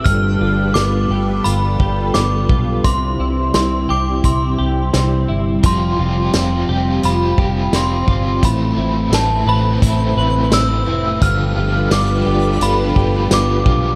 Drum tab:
HH |x-x-x-x-|x-x-x-x-|x-x-x-x-|x-x-x-x-|
TB |--------|--------|--x---x-|--x---x-|
SD |--o---o-|--o---o-|--o---o-|--o---o-|
BD |o----o-o|o---o---|o----o-o|o---o---|

HH |x-x-x-x-|
TB |--x---x-|
SD |--o---o-|
BD |o----o-o|